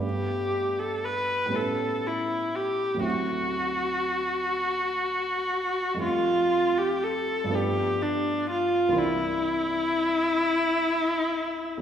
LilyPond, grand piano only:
\new Staff \with { instrumentName = "Grand piano" } { \time 6/8 \key g \major \tempo 4. = 40 <g, a b d' g'>4. <a, g b cis' e'>4. | <d, fis a c' e'>2. | <f, g a c' f'>4. <g, f a b d'>4. | <c, e bes c' d'>2. | }